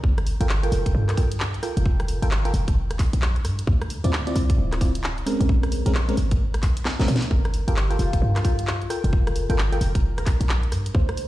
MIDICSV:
0, 0, Header, 1, 5, 480
1, 0, Start_track
1, 0, Key_signature, -2, "minor"
1, 0, Tempo, 454545
1, 40, Time_signature, 4, 2, 24, 8
1, 11910, End_track
2, 0, Start_track
2, 0, Title_t, "Harp"
2, 0, Program_c, 0, 46
2, 7720, Note_on_c, 0, 70, 96
2, 8110, Note_on_c, 0, 67, 91
2, 8440, Note_on_c, 0, 65, 92
2, 8824, Note_off_c, 0, 65, 0
2, 8828, Note_on_c, 0, 65, 94
2, 9960, Note_off_c, 0, 70, 0
2, 10267, Note_on_c, 0, 70, 93
2, 10596, Note_off_c, 0, 67, 0
2, 10743, Note_off_c, 0, 70, 0
2, 10747, Note_on_c, 0, 70, 96
2, 11492, Note_off_c, 0, 65, 0
2, 11558, Note_on_c, 0, 72, 99
2, 11910, Note_off_c, 0, 70, 0
2, 11910, Note_off_c, 0, 72, 0
2, 11910, End_track
3, 0, Start_track
3, 0, Title_t, "FM electric piano"
3, 0, Program_c, 1, 5
3, 428, Note_on_c, 1, 70, 82
3, 429, Note_on_c, 1, 65, 90
3, 429, Note_on_c, 1, 69, 81
3, 429, Note_on_c, 1, 79, 98
3, 499, Note_off_c, 1, 65, 0
3, 499, Note_off_c, 1, 69, 0
3, 499, Note_off_c, 1, 70, 0
3, 499, Note_off_c, 1, 79, 0
3, 668, Note_on_c, 1, 65, 87
3, 668, Note_on_c, 1, 69, 81
3, 668, Note_on_c, 1, 70, 82
3, 668, Note_on_c, 1, 79, 99
3, 1218, Note_off_c, 1, 65, 0
3, 1218, Note_off_c, 1, 69, 0
3, 1218, Note_off_c, 1, 70, 0
3, 1218, Note_off_c, 1, 79, 0
3, 1238, Note_on_c, 1, 65, 79
3, 1238, Note_on_c, 1, 79, 88
3, 1239, Note_on_c, 1, 69, 74
3, 1239, Note_on_c, 1, 70, 73
3, 1354, Note_off_c, 1, 65, 0
3, 1354, Note_off_c, 1, 79, 0
3, 1355, Note_off_c, 1, 69, 0
3, 1355, Note_off_c, 1, 70, 0
3, 1719, Note_on_c, 1, 65, 82
3, 1719, Note_on_c, 1, 69, 72
3, 1720, Note_on_c, 1, 70, 73
3, 1720, Note_on_c, 1, 79, 88
3, 2313, Note_off_c, 1, 65, 0
3, 2313, Note_off_c, 1, 69, 0
3, 2313, Note_off_c, 1, 70, 0
3, 2313, Note_off_c, 1, 79, 0
3, 2348, Note_on_c, 1, 65, 92
3, 2348, Note_on_c, 1, 69, 89
3, 2348, Note_on_c, 1, 70, 84
3, 2348, Note_on_c, 1, 79, 105
3, 2419, Note_off_c, 1, 65, 0
3, 2419, Note_off_c, 1, 69, 0
3, 2419, Note_off_c, 1, 70, 0
3, 2419, Note_off_c, 1, 79, 0
3, 2589, Note_on_c, 1, 65, 93
3, 2589, Note_on_c, 1, 79, 100
3, 2590, Note_on_c, 1, 69, 83
3, 2590, Note_on_c, 1, 70, 86
3, 2659, Note_off_c, 1, 65, 0
3, 2659, Note_off_c, 1, 79, 0
3, 2660, Note_off_c, 1, 69, 0
3, 2660, Note_off_c, 1, 70, 0
3, 4269, Note_on_c, 1, 60, 89
3, 4269, Note_on_c, 1, 64, 84
3, 4269, Note_on_c, 1, 65, 85
3, 4269, Note_on_c, 1, 74, 100
3, 4339, Note_off_c, 1, 60, 0
3, 4339, Note_off_c, 1, 64, 0
3, 4339, Note_off_c, 1, 65, 0
3, 4339, Note_off_c, 1, 74, 0
3, 4509, Note_on_c, 1, 60, 90
3, 4509, Note_on_c, 1, 64, 82
3, 4509, Note_on_c, 1, 65, 84
3, 4509, Note_on_c, 1, 74, 102
3, 5058, Note_off_c, 1, 60, 0
3, 5058, Note_off_c, 1, 64, 0
3, 5058, Note_off_c, 1, 65, 0
3, 5058, Note_off_c, 1, 74, 0
3, 5080, Note_on_c, 1, 60, 81
3, 5080, Note_on_c, 1, 64, 72
3, 5080, Note_on_c, 1, 65, 72
3, 5080, Note_on_c, 1, 74, 86
3, 5195, Note_off_c, 1, 60, 0
3, 5195, Note_off_c, 1, 64, 0
3, 5195, Note_off_c, 1, 65, 0
3, 5195, Note_off_c, 1, 74, 0
3, 5559, Note_on_c, 1, 56, 79
3, 5559, Note_on_c, 1, 60, 73
3, 5559, Note_on_c, 1, 61, 73
3, 5559, Note_on_c, 1, 70, 91
3, 6152, Note_off_c, 1, 56, 0
3, 6152, Note_off_c, 1, 60, 0
3, 6153, Note_off_c, 1, 61, 0
3, 6153, Note_off_c, 1, 70, 0
3, 6188, Note_on_c, 1, 56, 96
3, 6188, Note_on_c, 1, 60, 87
3, 6188, Note_on_c, 1, 61, 84
3, 6188, Note_on_c, 1, 70, 107
3, 6259, Note_off_c, 1, 56, 0
3, 6259, Note_off_c, 1, 60, 0
3, 6259, Note_off_c, 1, 61, 0
3, 6259, Note_off_c, 1, 70, 0
3, 6427, Note_on_c, 1, 56, 90
3, 6427, Note_on_c, 1, 60, 81
3, 6427, Note_on_c, 1, 61, 84
3, 6427, Note_on_c, 1, 70, 103
3, 6498, Note_off_c, 1, 60, 0
3, 6498, Note_off_c, 1, 61, 0
3, 6499, Note_off_c, 1, 56, 0
3, 6499, Note_off_c, 1, 70, 0
3, 7388, Note_on_c, 1, 56, 94
3, 7388, Note_on_c, 1, 60, 88
3, 7388, Note_on_c, 1, 61, 83
3, 7388, Note_on_c, 1, 70, 105
3, 7515, Note_off_c, 1, 56, 0
3, 7515, Note_off_c, 1, 60, 0
3, 7515, Note_off_c, 1, 61, 0
3, 7515, Note_off_c, 1, 70, 0
3, 8108, Note_on_c, 1, 65, 90
3, 8108, Note_on_c, 1, 69, 84
3, 8108, Note_on_c, 1, 70, 85
3, 8108, Note_on_c, 1, 79, 97
3, 8179, Note_off_c, 1, 65, 0
3, 8179, Note_off_c, 1, 69, 0
3, 8179, Note_off_c, 1, 70, 0
3, 8179, Note_off_c, 1, 79, 0
3, 8347, Note_on_c, 1, 65, 89
3, 8347, Note_on_c, 1, 69, 86
3, 8347, Note_on_c, 1, 70, 84
3, 8347, Note_on_c, 1, 79, 97
3, 8897, Note_off_c, 1, 65, 0
3, 8897, Note_off_c, 1, 69, 0
3, 8897, Note_off_c, 1, 70, 0
3, 8897, Note_off_c, 1, 79, 0
3, 8919, Note_on_c, 1, 65, 77
3, 8919, Note_on_c, 1, 70, 69
3, 8920, Note_on_c, 1, 69, 72
3, 8920, Note_on_c, 1, 79, 88
3, 9035, Note_off_c, 1, 65, 0
3, 9035, Note_off_c, 1, 69, 0
3, 9035, Note_off_c, 1, 70, 0
3, 9035, Note_off_c, 1, 79, 0
3, 9399, Note_on_c, 1, 65, 80
3, 9399, Note_on_c, 1, 69, 74
3, 9399, Note_on_c, 1, 70, 75
3, 9399, Note_on_c, 1, 79, 89
3, 9992, Note_off_c, 1, 65, 0
3, 9992, Note_off_c, 1, 69, 0
3, 9992, Note_off_c, 1, 70, 0
3, 9992, Note_off_c, 1, 79, 0
3, 10029, Note_on_c, 1, 65, 98
3, 10029, Note_on_c, 1, 69, 84
3, 10029, Note_on_c, 1, 70, 89
3, 10029, Note_on_c, 1, 79, 102
3, 10099, Note_off_c, 1, 65, 0
3, 10099, Note_off_c, 1, 69, 0
3, 10099, Note_off_c, 1, 70, 0
3, 10099, Note_off_c, 1, 79, 0
3, 10268, Note_on_c, 1, 65, 95
3, 10268, Note_on_c, 1, 69, 82
3, 10268, Note_on_c, 1, 70, 83
3, 10268, Note_on_c, 1, 79, 103
3, 10339, Note_off_c, 1, 65, 0
3, 10339, Note_off_c, 1, 69, 0
3, 10339, Note_off_c, 1, 70, 0
3, 10339, Note_off_c, 1, 79, 0
3, 11910, End_track
4, 0, Start_track
4, 0, Title_t, "808-style bass"
4, 0, Program_c, 2, 38
4, 39, Note_on_c, 2, 31, 100
4, 388, Note_off_c, 2, 31, 0
4, 428, Note_on_c, 2, 31, 92
4, 735, Note_off_c, 2, 31, 0
4, 759, Note_on_c, 2, 29, 88
4, 969, Note_off_c, 2, 29, 0
4, 999, Note_on_c, 2, 43, 101
4, 1695, Note_off_c, 2, 43, 0
4, 1868, Note_on_c, 2, 29, 95
4, 2308, Note_off_c, 2, 29, 0
4, 2348, Note_on_c, 2, 31, 89
4, 2655, Note_off_c, 2, 31, 0
4, 2679, Note_on_c, 2, 29, 86
4, 3159, Note_on_c, 2, 31, 89
4, 3175, Note_off_c, 2, 29, 0
4, 3283, Note_off_c, 2, 31, 0
4, 3308, Note_on_c, 2, 34, 93
4, 3639, Note_on_c, 2, 43, 94
4, 3655, Note_off_c, 2, 34, 0
4, 3849, Note_off_c, 2, 43, 0
4, 3879, Note_on_c, 2, 38, 98
4, 4228, Note_off_c, 2, 38, 0
4, 4268, Note_on_c, 2, 38, 92
4, 4575, Note_off_c, 2, 38, 0
4, 4599, Note_on_c, 2, 36, 83
4, 4809, Note_off_c, 2, 36, 0
4, 4839, Note_on_c, 2, 26, 103
4, 5535, Note_off_c, 2, 26, 0
4, 5707, Note_on_c, 2, 34, 98
4, 6147, Note_off_c, 2, 34, 0
4, 6186, Note_on_c, 2, 34, 91
4, 6494, Note_off_c, 2, 34, 0
4, 6518, Note_on_c, 2, 32, 86
4, 6999, Note_on_c, 2, 34, 108
4, 7014, Note_off_c, 2, 32, 0
4, 7348, Note_off_c, 2, 34, 0
4, 7386, Note_on_c, 2, 34, 90
4, 7463, Note_off_c, 2, 34, 0
4, 7478, Note_on_c, 2, 46, 97
4, 7602, Note_off_c, 2, 46, 0
4, 7718, Note_on_c, 2, 31, 96
4, 8068, Note_off_c, 2, 31, 0
4, 8107, Note_on_c, 2, 31, 92
4, 8415, Note_off_c, 2, 31, 0
4, 8439, Note_on_c, 2, 29, 85
4, 8648, Note_off_c, 2, 29, 0
4, 8678, Note_on_c, 2, 43, 104
4, 9374, Note_off_c, 2, 43, 0
4, 9547, Note_on_c, 2, 29, 99
4, 9988, Note_off_c, 2, 29, 0
4, 10027, Note_on_c, 2, 31, 93
4, 10334, Note_off_c, 2, 31, 0
4, 10359, Note_on_c, 2, 29, 85
4, 10839, Note_on_c, 2, 31, 83
4, 10855, Note_off_c, 2, 29, 0
4, 10963, Note_off_c, 2, 31, 0
4, 10987, Note_on_c, 2, 34, 96
4, 11319, Note_on_c, 2, 43, 93
4, 11335, Note_off_c, 2, 34, 0
4, 11528, Note_off_c, 2, 43, 0
4, 11559, Note_on_c, 2, 38, 99
4, 11908, Note_off_c, 2, 38, 0
4, 11910, End_track
5, 0, Start_track
5, 0, Title_t, "Drums"
5, 39, Note_on_c, 9, 36, 121
5, 145, Note_off_c, 9, 36, 0
5, 189, Note_on_c, 9, 37, 69
5, 189, Note_on_c, 9, 42, 39
5, 280, Note_on_c, 9, 46, 101
5, 295, Note_off_c, 9, 37, 0
5, 295, Note_off_c, 9, 42, 0
5, 386, Note_off_c, 9, 46, 0
5, 429, Note_on_c, 9, 42, 67
5, 521, Note_on_c, 9, 39, 122
5, 535, Note_off_c, 9, 42, 0
5, 627, Note_off_c, 9, 39, 0
5, 670, Note_on_c, 9, 42, 50
5, 761, Note_on_c, 9, 46, 99
5, 775, Note_off_c, 9, 42, 0
5, 866, Note_off_c, 9, 46, 0
5, 909, Note_on_c, 9, 36, 102
5, 910, Note_on_c, 9, 42, 62
5, 1014, Note_off_c, 9, 36, 0
5, 1016, Note_off_c, 9, 42, 0
5, 1150, Note_on_c, 9, 37, 64
5, 1150, Note_on_c, 9, 39, 58
5, 1150, Note_on_c, 9, 42, 54
5, 1240, Note_on_c, 9, 36, 98
5, 1241, Note_on_c, 9, 46, 96
5, 1256, Note_off_c, 9, 37, 0
5, 1256, Note_off_c, 9, 39, 0
5, 1256, Note_off_c, 9, 42, 0
5, 1346, Note_off_c, 9, 36, 0
5, 1347, Note_off_c, 9, 46, 0
5, 1389, Note_on_c, 9, 42, 69
5, 1480, Note_on_c, 9, 39, 113
5, 1495, Note_off_c, 9, 42, 0
5, 1585, Note_off_c, 9, 39, 0
5, 1629, Note_on_c, 9, 42, 37
5, 1720, Note_on_c, 9, 37, 49
5, 1720, Note_on_c, 9, 46, 96
5, 1735, Note_off_c, 9, 42, 0
5, 1825, Note_off_c, 9, 37, 0
5, 1825, Note_off_c, 9, 46, 0
5, 1869, Note_on_c, 9, 42, 67
5, 1960, Note_on_c, 9, 36, 111
5, 1975, Note_off_c, 9, 42, 0
5, 2065, Note_off_c, 9, 36, 0
5, 2110, Note_on_c, 9, 37, 65
5, 2110, Note_on_c, 9, 42, 39
5, 2201, Note_on_c, 9, 46, 102
5, 2216, Note_off_c, 9, 37, 0
5, 2216, Note_off_c, 9, 42, 0
5, 2307, Note_off_c, 9, 46, 0
5, 2350, Note_on_c, 9, 42, 70
5, 2440, Note_on_c, 9, 39, 116
5, 2455, Note_off_c, 9, 42, 0
5, 2546, Note_off_c, 9, 39, 0
5, 2589, Note_on_c, 9, 42, 53
5, 2680, Note_on_c, 9, 46, 102
5, 2695, Note_off_c, 9, 42, 0
5, 2786, Note_off_c, 9, 46, 0
5, 2829, Note_on_c, 9, 36, 98
5, 2829, Note_on_c, 9, 42, 65
5, 2934, Note_off_c, 9, 36, 0
5, 2935, Note_off_c, 9, 42, 0
5, 3069, Note_on_c, 9, 37, 63
5, 3069, Note_on_c, 9, 42, 54
5, 3160, Note_on_c, 9, 36, 96
5, 3160, Note_on_c, 9, 39, 56
5, 3160, Note_on_c, 9, 46, 102
5, 3175, Note_off_c, 9, 37, 0
5, 3175, Note_off_c, 9, 42, 0
5, 3265, Note_off_c, 9, 36, 0
5, 3266, Note_off_c, 9, 39, 0
5, 3266, Note_off_c, 9, 46, 0
5, 3309, Note_on_c, 9, 42, 70
5, 3400, Note_on_c, 9, 39, 108
5, 3414, Note_off_c, 9, 42, 0
5, 3506, Note_off_c, 9, 39, 0
5, 3549, Note_on_c, 9, 42, 37
5, 3640, Note_on_c, 9, 37, 48
5, 3640, Note_on_c, 9, 46, 104
5, 3655, Note_off_c, 9, 42, 0
5, 3746, Note_off_c, 9, 37, 0
5, 3746, Note_off_c, 9, 46, 0
5, 3789, Note_on_c, 9, 42, 68
5, 3880, Note_on_c, 9, 36, 115
5, 3895, Note_off_c, 9, 42, 0
5, 3985, Note_off_c, 9, 36, 0
5, 4029, Note_on_c, 9, 37, 68
5, 4029, Note_on_c, 9, 42, 39
5, 4120, Note_on_c, 9, 46, 107
5, 4135, Note_off_c, 9, 37, 0
5, 4135, Note_off_c, 9, 42, 0
5, 4226, Note_off_c, 9, 46, 0
5, 4269, Note_on_c, 9, 42, 70
5, 4361, Note_on_c, 9, 39, 114
5, 4375, Note_off_c, 9, 42, 0
5, 4466, Note_off_c, 9, 39, 0
5, 4509, Note_on_c, 9, 42, 54
5, 4600, Note_on_c, 9, 46, 107
5, 4615, Note_off_c, 9, 42, 0
5, 4706, Note_off_c, 9, 46, 0
5, 4749, Note_on_c, 9, 36, 99
5, 4750, Note_on_c, 9, 42, 69
5, 4855, Note_off_c, 9, 36, 0
5, 4855, Note_off_c, 9, 42, 0
5, 4990, Note_on_c, 9, 37, 65
5, 4990, Note_on_c, 9, 39, 56
5, 4990, Note_on_c, 9, 42, 56
5, 5080, Note_on_c, 9, 36, 92
5, 5081, Note_on_c, 9, 46, 101
5, 5095, Note_off_c, 9, 37, 0
5, 5095, Note_off_c, 9, 39, 0
5, 5095, Note_off_c, 9, 42, 0
5, 5185, Note_off_c, 9, 36, 0
5, 5186, Note_off_c, 9, 46, 0
5, 5230, Note_on_c, 9, 42, 73
5, 5320, Note_on_c, 9, 39, 109
5, 5335, Note_off_c, 9, 42, 0
5, 5426, Note_off_c, 9, 39, 0
5, 5469, Note_on_c, 9, 42, 39
5, 5561, Note_on_c, 9, 37, 48
5, 5561, Note_on_c, 9, 46, 106
5, 5575, Note_off_c, 9, 42, 0
5, 5666, Note_off_c, 9, 37, 0
5, 5666, Note_off_c, 9, 46, 0
5, 5709, Note_on_c, 9, 42, 68
5, 5799, Note_on_c, 9, 36, 115
5, 5815, Note_off_c, 9, 42, 0
5, 5905, Note_off_c, 9, 36, 0
5, 5949, Note_on_c, 9, 37, 68
5, 5949, Note_on_c, 9, 42, 40
5, 6040, Note_on_c, 9, 46, 112
5, 6054, Note_off_c, 9, 37, 0
5, 6054, Note_off_c, 9, 42, 0
5, 6145, Note_off_c, 9, 46, 0
5, 6189, Note_on_c, 9, 42, 68
5, 6279, Note_on_c, 9, 39, 118
5, 6294, Note_off_c, 9, 42, 0
5, 6385, Note_off_c, 9, 39, 0
5, 6428, Note_on_c, 9, 42, 54
5, 6519, Note_on_c, 9, 46, 108
5, 6534, Note_off_c, 9, 42, 0
5, 6624, Note_off_c, 9, 46, 0
5, 6667, Note_on_c, 9, 42, 62
5, 6668, Note_on_c, 9, 36, 102
5, 6773, Note_off_c, 9, 42, 0
5, 6774, Note_off_c, 9, 36, 0
5, 6908, Note_on_c, 9, 37, 70
5, 6908, Note_on_c, 9, 42, 55
5, 6999, Note_on_c, 9, 36, 94
5, 6999, Note_on_c, 9, 39, 56
5, 6999, Note_on_c, 9, 46, 106
5, 7014, Note_off_c, 9, 37, 0
5, 7014, Note_off_c, 9, 42, 0
5, 7104, Note_off_c, 9, 39, 0
5, 7104, Note_off_c, 9, 46, 0
5, 7105, Note_off_c, 9, 36, 0
5, 7147, Note_on_c, 9, 42, 73
5, 7238, Note_on_c, 9, 38, 64
5, 7238, Note_on_c, 9, 39, 108
5, 7253, Note_off_c, 9, 42, 0
5, 7343, Note_off_c, 9, 38, 0
5, 7343, Note_off_c, 9, 39, 0
5, 7387, Note_on_c, 9, 42, 38
5, 7399, Note_on_c, 9, 38, 80
5, 7478, Note_on_c, 9, 46, 111
5, 7493, Note_off_c, 9, 42, 0
5, 7504, Note_off_c, 9, 38, 0
5, 7558, Note_on_c, 9, 38, 91
5, 7584, Note_off_c, 9, 46, 0
5, 7628, Note_on_c, 9, 42, 66
5, 7664, Note_off_c, 9, 38, 0
5, 7719, Note_on_c, 9, 36, 123
5, 7733, Note_off_c, 9, 42, 0
5, 7825, Note_off_c, 9, 36, 0
5, 7868, Note_on_c, 9, 37, 72
5, 7868, Note_on_c, 9, 42, 38
5, 7959, Note_on_c, 9, 46, 110
5, 7974, Note_off_c, 9, 37, 0
5, 7974, Note_off_c, 9, 42, 0
5, 8064, Note_off_c, 9, 46, 0
5, 8109, Note_on_c, 9, 42, 66
5, 8200, Note_on_c, 9, 39, 122
5, 8214, Note_off_c, 9, 42, 0
5, 8305, Note_off_c, 9, 39, 0
5, 8349, Note_on_c, 9, 42, 51
5, 8440, Note_on_c, 9, 46, 105
5, 8454, Note_off_c, 9, 42, 0
5, 8545, Note_off_c, 9, 46, 0
5, 8588, Note_on_c, 9, 36, 103
5, 8589, Note_on_c, 9, 42, 64
5, 8693, Note_off_c, 9, 36, 0
5, 8694, Note_off_c, 9, 42, 0
5, 8829, Note_on_c, 9, 37, 72
5, 8829, Note_on_c, 9, 39, 61
5, 8829, Note_on_c, 9, 42, 52
5, 8919, Note_on_c, 9, 36, 102
5, 8920, Note_on_c, 9, 46, 105
5, 8935, Note_off_c, 9, 37, 0
5, 8935, Note_off_c, 9, 39, 0
5, 8935, Note_off_c, 9, 42, 0
5, 9025, Note_off_c, 9, 36, 0
5, 9026, Note_off_c, 9, 46, 0
5, 9069, Note_on_c, 9, 42, 68
5, 9159, Note_on_c, 9, 39, 113
5, 9175, Note_off_c, 9, 42, 0
5, 9265, Note_off_c, 9, 39, 0
5, 9309, Note_on_c, 9, 42, 37
5, 9401, Note_on_c, 9, 37, 52
5, 9401, Note_on_c, 9, 46, 105
5, 9415, Note_off_c, 9, 42, 0
5, 9507, Note_off_c, 9, 37, 0
5, 9507, Note_off_c, 9, 46, 0
5, 9550, Note_on_c, 9, 42, 64
5, 9639, Note_on_c, 9, 36, 127
5, 9656, Note_off_c, 9, 42, 0
5, 9745, Note_off_c, 9, 36, 0
5, 9791, Note_on_c, 9, 37, 73
5, 9791, Note_on_c, 9, 42, 36
5, 9881, Note_on_c, 9, 46, 108
5, 9896, Note_off_c, 9, 37, 0
5, 9896, Note_off_c, 9, 42, 0
5, 9986, Note_off_c, 9, 46, 0
5, 10029, Note_on_c, 9, 42, 66
5, 10121, Note_on_c, 9, 39, 124
5, 10135, Note_off_c, 9, 42, 0
5, 10226, Note_off_c, 9, 39, 0
5, 10270, Note_on_c, 9, 42, 49
5, 10361, Note_on_c, 9, 46, 107
5, 10376, Note_off_c, 9, 42, 0
5, 10466, Note_off_c, 9, 46, 0
5, 10508, Note_on_c, 9, 36, 109
5, 10510, Note_on_c, 9, 42, 63
5, 10614, Note_off_c, 9, 36, 0
5, 10615, Note_off_c, 9, 42, 0
5, 10750, Note_on_c, 9, 37, 72
5, 10750, Note_on_c, 9, 42, 50
5, 10840, Note_on_c, 9, 36, 105
5, 10840, Note_on_c, 9, 39, 62
5, 10840, Note_on_c, 9, 46, 106
5, 10855, Note_off_c, 9, 37, 0
5, 10855, Note_off_c, 9, 42, 0
5, 10945, Note_off_c, 9, 36, 0
5, 10946, Note_off_c, 9, 39, 0
5, 10946, Note_off_c, 9, 46, 0
5, 10990, Note_on_c, 9, 42, 66
5, 11080, Note_on_c, 9, 39, 117
5, 11095, Note_off_c, 9, 42, 0
5, 11186, Note_off_c, 9, 39, 0
5, 11230, Note_on_c, 9, 42, 36
5, 11321, Note_on_c, 9, 37, 52
5, 11321, Note_on_c, 9, 46, 106
5, 11335, Note_off_c, 9, 42, 0
5, 11426, Note_off_c, 9, 37, 0
5, 11426, Note_off_c, 9, 46, 0
5, 11469, Note_on_c, 9, 42, 61
5, 11560, Note_on_c, 9, 36, 127
5, 11575, Note_off_c, 9, 42, 0
5, 11665, Note_off_c, 9, 36, 0
5, 11710, Note_on_c, 9, 37, 73
5, 11710, Note_on_c, 9, 42, 35
5, 11800, Note_on_c, 9, 46, 105
5, 11815, Note_off_c, 9, 37, 0
5, 11815, Note_off_c, 9, 42, 0
5, 11906, Note_off_c, 9, 46, 0
5, 11910, End_track
0, 0, End_of_file